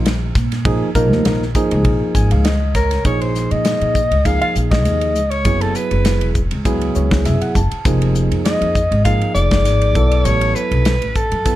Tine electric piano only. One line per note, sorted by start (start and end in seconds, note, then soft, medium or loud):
0.65 0.89 F3 medium
0.65 0.89 A#3 medium
0.65 0.89 D#4 medium
0.65 0.89 G#4 medium
0.95 1.43 F3 medium
0.95 1.43 A#3 medium
0.95 1.43 D#4 medium
0.95 1.43 A#4 medium
1.56 2.49 F3 medium
1.56 2.49 A#3 medium
1.56 2.49 D#4 medium
1.56 2.49 G#4 medium
2.15 2.30 G#5 medium
2.32 2.44 F5 medium
2.45 2.73 D#5 medium
2.75 3.03 C#5 medium
3.05 3.99 F3 medium
3.05 3.99 A#3 medium
3.05 3.99 D#4 medium
3.05 3.99 G#4 medium
4.25 5.19 F3 medium
4.25 5.19 A#3 medium
4.25 5.19 D#4 medium
4.25 5.19 G#4 medium
5.45 6.39 F#3 medium
5.45 6.39 B3 soft
5.45 6.39 E4 medium
5.45 6.39 G#4 medium
6.65 7.59 F#3 medium
6.65 7.59 B3 medium
6.65 7.59 E4 medium
6.65 7.59 G#4 medium
6.96 7.23 C#5 medium
7.26 7.41 E5 medium
7.42 7.54 F#5 medium
7.56 7.84 A5 medium
7.85 8.80 F3 medium
7.85 8.79 A#3 medium
7.85 8.79 D#4 medium
7.85 8.80 G#4 medium
9.06 9.96 F3 medium
9.06 9.96 A#3 medium
9.06 9.96 D#4 medium
9.06 9.96 G#4 medium
9.95 10.92 F#3 medium
9.95 10.92 B3 medium
9.95 10.93 E4 medium
9.95 10.93 A4 medium
11.45 11.56 F#3 medium
11.45 11.56 B3 medium
11.45 11.56 E4 medium
11.45 11.56 A4 medium